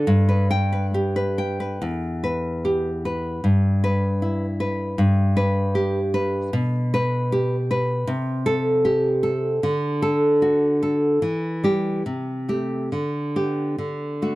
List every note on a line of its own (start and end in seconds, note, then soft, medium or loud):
0.07 1.79 G2 medium
0.29 0.50 B4 medium
0.51 0.86 G5 medium
0.72 1.15 B4 medium
0.94 1.83 G4 medium
1.16 1.59 B4 medium
1.38 1.82 G5 medium
1.60 1.82 B4 medium
1.82 3.39 E2 medium
2.24 2.88 B4 medium
2.65 3.44 G4 soft
3.05 3.45 B4 soft
3.44 4.94 G2 medium
3.84 4.45 B4 medium
4.22 4.99 E4 soft
4.60 4.99 B4 medium
4.98 6.49 G2 medium
5.37 5.98 B4 medium
5.75 6.53 G4 medium
6.14 6.53 B4 medium
6.53 8.04 B2 medium
6.94 7.55 B4 medium
7.32 8.08 G4 medium
7.71 8.08 B4 medium
8.07 9.59 C3 medium
8.46 9.08 A4 medium
8.85 9.63 G4 medium
9.23 9.63 A4 medium
9.63 11.18 D3 medium
10.02 10.65 A4 medium
10.42 11.22 F#4 soft
10.83 11.23 A4 medium
11.22 12.03 E3 medium
11.64 12.01 G3 soft
11.64 12.02 G4 medium
12.06 12.89 C3 soft
12.48 12.88 A3 soft
12.48 12.88 G4 soft
12.92 13.76 D3 soft
13.36 13.74 B3 soft
13.36 13.75 G4 soft
13.78 14.35 D3 soft
14.22 14.35 A3 soft
14.22 14.35 F#4 soft